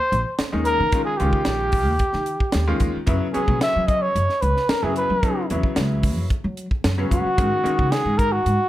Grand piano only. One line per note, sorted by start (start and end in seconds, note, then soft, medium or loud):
0.52 0.79 D#3 medium
0.52 0.79 G#3 medium
0.52 0.79 C#4 medium
0.52 0.79 D#4 medium
0.93 1.11 D#3 medium
0.93 1.11 G#3 medium
0.93 1.11 C#4 medium
0.93 1.11 F4 medium
1.19 1.92 D#3 medium
1.19 1.92 G#3 medium
1.19 1.92 C#4 medium
1.19 1.92 F4 medium
2.67 2.95 D#3 medium
2.67 2.94 G#3 medium
2.67 2.94 C#4 medium
2.67 2.95 F4 medium
3.06 3.25 C#3 medium
3.06 3.25 F#3 medium
3.06 3.25 B3 medium
3.06 3.25 E4 medium
3.34 4.06 C#3 medium
3.34 4.06 F#3 medium
3.34 4.06 B3 medium
3.34 4.07 C#4 medium
4.83 5.10 C#3 medium
4.83 5.10 F#3 medium
4.83 5.10 B3 medium
4.83 5.10 E4 medium
5.23 5.41 C#3 medium
5.23 5.41 F#3 medium
5.23 5.41 B3 medium
5.23 5.41 D#4 medium
5.51 6.22 C#3 medium
5.51 6.23 F#3 medium
5.51 6.23 B3 medium
5.51 6.23 E4 medium
6.98 7.25 C#3 medium
6.98 7.25 F#3 medium
6.98 7.25 B3 medium
6.98 7.25 C#4 medium
7.37 7.56 D#3 medium
7.37 7.56 G#3 medium
7.37 7.56 C#4 medium
7.37 7.56 F#4 medium
7.64 8.37 D#3 medium
7.64 8.37 G#3 medium
7.64 8.37 C#4 medium
7.64 8.37 D#4 medium